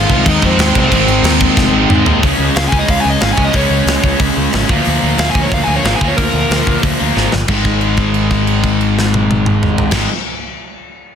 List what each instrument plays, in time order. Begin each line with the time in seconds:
Already playing: distorted electric guitar G#2 D#3 G#3 C4 D#4, overdriven electric guitar F4 F5
0.09 picked electric bass C2, kick, crash
0.26 picked electric bass D#2, overdriven electric guitar D#4 D#5, kick, crash
0.42 picked electric bass F2, distorted electric guitar D#3 G#3, overdriven electric guitar C4 C5, kick, crash
0.46 distorted electric guitar G#2
0.58 picked electric bass D#2, distorted electric guitar G#2 D#3 G#3, snare, crash
0.74 picked electric bass C2, distorted electric guitar G#2 D#3 G#3, overdriven electric guitar C4, kick, crash
0.79 overdriven electric guitar C5
0.91 picked electric bass G#1, distorted electric guitar G#2 D#3 G#3 C4 D#4, kick, crash
1.07 picked electric bass G#1, crash
1.23 picked electric bass D#2, snare, crash
1.41 kick, crash
1.57 picked electric bass F1, kick, snare
1.72 picked electric bass G#1, distorted electric guitar D#3 G#3
1.76 distorted electric guitar G#2
1.89 distorted electric guitar G#2 D#3 G#3, picked electric bass G#2, mid tom
2.05 picked electric bass D#2, distorted electric guitar G#2 D#3 G#3, floor tom
2.23 picked electric bass C#2, distorted electric guitar C#3 G#3 C#4, kick, open hi-hat
2.39 picked electric bass C#2
2.56 picked electric bass C#2, overdriven electric guitar F5, snare, open hi-hat
2.69 picked electric bass C#2, distorted electric guitar C#4, overdriven electric guitar G#5, kick
2.74 distorted electric guitar C#3 G#3
2.79 overdriven electric guitar D#5
2.88 picked electric bass C#2, overdriven electric guitar F5, kick, open hi-hat
3.00 overdriven electric guitar G#5
3.05 picked electric bass C#2
3.10 overdriven electric guitar D#5
3.20 picked electric bass G#1, distorted electric guitar C#3 G#3 C#4, overdriven electric guitar F5, snare, open hi-hat
3.33 distorted electric guitar C#4, overdriven electric guitar G#5
3.37 picked electric bass C#2, distorted electric guitar C#3 G#3, kick
3.44 overdriven electric guitar D#5
3.53 picked electric bass C#2, distorted electric guitar C#3 G#3, overdriven electric guitar C#5, kick, open hi-hat
3.57 distorted electric guitar C#4
3.70 picked electric bass C#2
3.86 picked electric bass C#2, snare, open hi-hat
4.03 picked electric bass C#2, distorted electric guitar G#3 C#4, kick
4.07 distorted electric guitar C#3
4.20 picked electric bass C#2, kick, open hi-hat
4.37 picked electric bass C#2
4.53 picked electric bass G#1, distorted electric guitar C#3 G#3 C#4, snare, open hi-hat
4.68 picked electric bass D2, distorted electric guitar A#2 F3 A#3, kick
4.85 picked electric bass D2, open hi-hat
5.03 picked electric bass D2
5.18 picked electric bass D2, distorted electric guitar A#2 F3, overdriven electric guitar F5, snare, open hi-hat
5.22 distorted electric guitar A#3
5.31 picked electric bass D2, overdriven electric guitar G#5
5.35 kick
5.42 overdriven electric guitar C#5
5.52 picked electric bass D2, overdriven electric guitar F5, kick, open hi-hat
5.63 picked electric bass D2, overdriven electric guitar G#5
5.67 distorted electric guitar A#2 F3 A#3
5.76 overdriven electric guitar C#5
5.83 picked electric bass G#1, distorted electric guitar A#2 F3 A#3, overdriven electric guitar F5, snare, open hi-hat
5.96 overdriven electric guitar G#5
6.00 picked electric bass D2, distorted electric guitar A#2 F3 A#3, kick
6.08 overdriven electric guitar C#5
6.17 picked electric bass D2, overdriven electric guitar A#4, kick, open hi-hat
6.33 picked electric bass D2
6.49 picked electric bass D2, distorted electric guitar A#2 F3 A#3, snare, open hi-hat
6.67 picked electric bass D2, kick
6.83 picked electric bass D2, kick, open hi-hat
7.00 picked electric bass D2, distorted electric guitar A#2 F3 A#3
7.15 picked electric bass G#1, distorted electric guitar A#2 F3 A#3, snare
7.32 picked electric bass G1, snare
7.48 picked electric bass G#1, distorted electric guitar G#2 D#3, kick, crash
7.53 distorted electric guitar G#3
7.64 kick, crash
7.81 crash
7.97 kick, crash
8.14 crash
8.31 kick, crash
8.47 crash
8.64 kick, crash
8.81 crash
8.99 snare
9.14 high tom
9.31 high tom
9.46 mid tom
9.63 mid tom
9.78 floor tom
9.91 picked electric bass G#1, distorted electric guitar G#2 D#3, kick, snare, crash
9.96 distorted electric guitar G#3